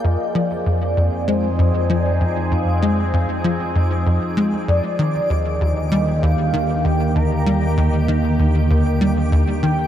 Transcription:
<<
  \new Staff \with { instrumentName = "Synth texture" } { \time 4/4 \key f \dorian \tempo 4 = 97 d'''1~ | d'''1~ | d'''1~ | d'''1 | }
  \new Staff \with { instrumentName = "Soft synth lead" } { \time 4/4 \key f \dorian ees''8 d''4. c''4 d''8 ees''8 | f''4 r2 r8 d''8~ | d''8 ees''4. f''4 g''8 bes''8~ | bes''4. r2 g''8 | }
  \new Staff \with { instrumentName = "Ambient pad" } { \time 4/4 \key f \dorian <f c' ees' aes'>1~ | <f c' ees' aes'>1 | <d ees bes g'>1~ | <d ees bes g'>1 | }
  \new Staff \with { instrumentName = "Analog synth bass" } { \clef bass \time 4/4 \key f \dorian f,8 f8 f,8 f,8 aes8 f,8 f8 f,8 | f,8 aes8 f,8 f8 f,8 f,8 aes8 f,8 | ees8 ees,8 ees,8 g8 ees,8 ees8 ees,8 ees,8 | g8 ees,8 ees8 ees,8 ees,8 g8 ees,8 ees8 | }
  \new Staff \with { instrumentName = "Synth drone" } { \clef bass \time 4/4 \key f \dorian f,1~ | f,1 | ees,1~ | ees,1 | }
>>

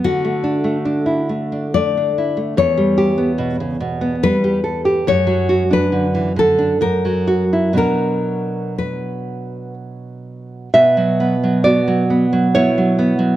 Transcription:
<<
  \new Staff \with { instrumentName = "Nylon-string guitar" } { \time 3/4 \key b \minor \tempo 4 = 68 fis'2 d''4 | cis''2 b'4 | cis''8. b'8. a'8 ais'4 | ais'4 b'4 r4 |
r2. | }
  \new Staff \with { instrumentName = "Nylon-string guitar" } { \time 3/4 \key b \minor << { r2. | r2. | r2. | r2. |
<b' e''>4 <fis' d''>4 <e' cis''>4 | } \\ { d16 a16 d'16 a16 d'16 e'16 a16 d'16 a16 d'16 e'16 a16 | e,16 g16 g'16 b16 b,16 cis16 b,16 b16 g16 g'16 a'16 g'16 | fis,16 fis16 fis'16 d'16 d16 e16 d16 d'16 fis,16 fis16 fis'16 e'16 | <b, fis d'>2. |
b,16 fis16 b16 fis16 b16 fis16 b16 fis16 b16 fis16 b16 fis16 | } >> }
>>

